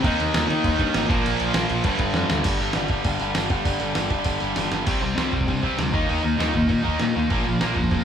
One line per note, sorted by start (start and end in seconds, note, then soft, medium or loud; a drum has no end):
0.03 0.14 D#2 loud
0.03 0.47 D#3 loud
0.03 0.48 A#3 medium
0.03 0.47 D#4 loud
0.03 kick loud
0.03 crash medium
0.20 0.29 D#2 medium
0.20 crash medium
0.34 0.44 D#2 loud
0.34 snare loud
0.34 crash medium
0.48 0.60 D#3 medium
0.48 1.07 D#3 medium
0.48 1.09 A#3 medium
0.48 1.08 D#4 medium
0.48 crash medium
0.64 0.74 D#2 loud
0.64 kick loud
0.64 crash medium
0.78 0.89 G2 loud
0.78 0.92 D#3 medium
0.78 0.94 A#3 medium
0.78 0.93 D#4 medium
0.78 kick medium
0.78 crash medium
0.93 1.05 G#1 loud
0.93 1.08 D#3 medium
0.93 1.09 A#3 medium
0.93 1.09 D#4 medium
0.93 snare loud
0.93 crash medium
1.08 1.20 A#1 medium
1.08 1.52 A#2 loud
1.08 1.54 F3 loud
1.08 1.54 A#3 loud
1.08 kick loud
1.08 crash medium
1.25 1.35 A#1 medium
1.25 crash loud
1.40 1.50 A#1 medium
1.40 crash medium
1.54 1.64 A#1 medium
1.54 1.83 A#2 medium
1.54 1.84 F3 medium
1.54 1.85 A#3 medium
1.54 snare loud
1.54 crash medium
1.70 1.80 A#1 medium
1.70 crash medium
1.83 1.95 G1 medium
1.83 2.28 G2 loud
1.83 2.29 D3 loud
1.83 2.28 G3 loud
1.83 kick loud
1.83 crash loud
1.99 2.10 G1 medium
1.99 kick medium
1.99 crash medium
2.14 2.25 F2 loud
2.14 snare medium
2.29 2.40 D2 medium
2.29 2.43 G2 medium
2.29 2.43 D3 medium
2.29 2.43 G3 medium
2.29 snare loud
2.44 2.56 G1 medium
2.44 2.61 G2 medium
2.44 2.60 D3 loud
2.44 2.60 G3 loud
2.44 kick loud
2.44 open hi-hat medium
2.44 crash loud
2.60 2.71 G1 medium
2.60 2.74 G2 medium
2.60 2.74 D3 medium
2.60 2.76 G3 medium
2.60 open hi-hat medium
2.73 2.86 G1 medium
2.73 2.90 G2 loud
2.73 2.89 D3 loud
2.73 2.89 G3 loud
2.73 snare loud
2.73 open hi-hat medium
2.88 3.01 G1 medium
2.88 3.04 G2 medium
2.88 3.04 D3 medium
2.88 3.05 G3 medium
2.88 kick medium
2.88 open hi-hat medium
3.05 3.16 G1 medium
3.05 3.19 G2 medium
3.05 3.19 D3 loud
3.05 3.19 G3 loud
3.05 kick medium
3.05 open hi-hat medium
3.19 3.32 G1 medium
3.19 3.34 G2 medium
3.19 3.34 D3 medium
3.19 3.35 G3 medium
3.19 open hi-hat medium
3.35 3.47 G1 medium
3.35 3.49 G2 medium
3.35 3.49 D3 loud
3.35 3.49 G3 loud
3.35 snare loud
3.35 open hi-hat medium
3.50 3.61 G1 medium
3.50 3.64 G2 medium
3.50 3.64 D3 medium
3.50 3.65 G3 loud
3.50 kick medium
3.50 open hi-hat medium
3.65 3.77 G1 medium
3.65 3.80 G2 medium
3.65 3.79 D3 loud
3.65 3.78 G3 loud
3.65 kick loud
3.65 open hi-hat medium
3.80 3.92 G1 medium
3.80 3.94 G2 medium
3.80 3.94 D3 medium
3.80 3.95 G3 loud
3.80 open hi-hat medium
3.95 4.07 G1 medium
3.95 4.10 G2 medium
3.95 4.10 D3 medium
3.95 4.09 G3 loud
3.95 snare loud
3.95 open hi-hat medium
4.10 4.22 G1 medium
4.10 4.23 G2 medium
4.10 4.24 D3 medium
4.10 4.25 G3 medium
4.10 kick medium
4.10 open hi-hat medium
4.24 4.37 G1 medium
4.24 4.40 G2 loud
4.24 4.40 D3 loud
4.24 4.39 G3 medium
4.24 kick medium
4.24 open hi-hat medium
4.40 4.53 G1 medium
4.40 4.55 G2 medium
4.40 4.55 D3 medium
4.40 4.56 G3 medium
4.40 open hi-hat medium
4.56 4.68 G1 medium
4.56 4.71 G2 medium
4.56 4.70 D3 medium
4.56 4.69 G3 loud
4.56 snare medium
4.56 open hi-hat medium
4.70 4.83 G1 medium
4.70 4.86 G2 medium
4.70 4.86 D3 medium
4.70 4.85 G3 medium
4.70 snare medium
4.70 open hi-hat medium
4.86 4.98 C2 medium
4.86 5.00 C3 medium
4.86 5.01 G3 medium
4.86 5.01 C4 medium
4.86 kick loud
4.86 open hi-hat soft
4.86 crash loud
5.01 5.13 C2 medium
5.01 5.14 C3 medium
5.01 5.15 G3 medium
5.01 5.18 C4 medium
5.15 5.28 C2 medium
5.15 5.31 C3 medium
5.15 5.31 G3 medium
5.15 5.31 C4 medium
5.15 snare loud
5.15 open hi-hat soft
5.31 5.43 C2 medium
5.31 5.46 C3 medium
5.31 5.46 G3 medium
5.31 5.47 C4 medium
5.31 kick medium
5.41 kick medium
5.47 5.59 G2 medium
5.47 5.61 C3 medium
5.47 5.61 G3 medium
5.47 5.62 C4 medium
5.47 kick medium
5.47 open hi-hat soft
5.62 5.74 C2 medium
5.62 5.75 C3 medium
5.62 5.76 G3 medium
5.62 5.77 C4 medium
5.62 kick medium
5.76 5.89 D2 medium
5.76 5.91 C3 medium
5.76 5.92 G3 medium
5.76 5.93 C4 medium
5.76 snare loud
5.76 open hi-hat soft
5.92 6.05 D#2 medium
5.92 6.06 D#3 medium
5.92 6.07 A#3 medium
5.92 6.08 D#4 loud
5.92 kick loud
6.07 6.19 D#2 medium
6.07 6.21 D#3 medium
6.07 6.21 A#3 medium
6.07 6.23 D#4 medium
6.07 open hi-hat medium
6.22 6.35 D#2 medium
6.22 6.37 D#3 medium
6.22 6.37 A#3 medium
6.22 6.36 D#4 medium
6.38 6.50 D#2 medium
6.38 6.51 D#3 medium
6.38 6.52 A#3 medium
6.38 6.54 D#4 medium
6.38 snare loud
6.38 open hi-hat soft
6.52 6.65 D#2 medium
6.52 6.66 D#3 medium
6.52 6.67 A#3 medium
6.52 6.67 D#4 medium
6.52 kick medium
6.62 kick medium
6.67 6.81 A#2 medium
6.67 6.81 D#3 medium
6.67 6.82 A#3 medium
6.67 6.84 D#4 medium
6.67 kick medium
6.67 open hi-hat soft
6.83 6.96 D#2 medium
6.83 6.98 D#3 medium
6.83 6.98 A#3 medium
6.83 6.99 D#4 medium
6.83 kick medium
6.99 7.11 A#2 medium
6.99 7.14 D#3 medium
6.99 7.14 A#3 medium
6.99 7.16 D#4 medium
6.99 snare loud
6.99 open hi-hat medium
7.15 7.31 D#2 medium
7.15 7.29 D#3 medium
7.15 7.29 A#3 medium
7.15 7.30 D#4 medium
7.30 7.41 A#1 medium
7.30 7.45 A#2 medium
7.30 7.45 F3 medium
7.30 7.45 A#3 medium
7.30 kick loud
7.30 open hi-hat medium
7.46 7.57 A#1 medium
7.46 7.59 A#2 medium
7.46 7.59 F3 medium
7.46 7.60 A#3 medium
7.60 7.73 A#1 medium
7.60 7.75 A#2 medium
7.60 7.75 F3 medium
7.60 7.75 A#3 loud
7.60 snare loud
7.60 open hi-hat medium
7.75 7.87 A#1 medium
7.75 7.90 A#2 medium
7.75 7.90 F3 medium
7.75 7.90 A#3 medium
7.75 kick medium
7.84 kick medium
7.91 8.03 F2 medium
7.91 8.04 A#2 medium
7.91 8.04 F3 medium
7.91 8.04 A#3 medium
7.91 kick medium
7.91 open hi-hat soft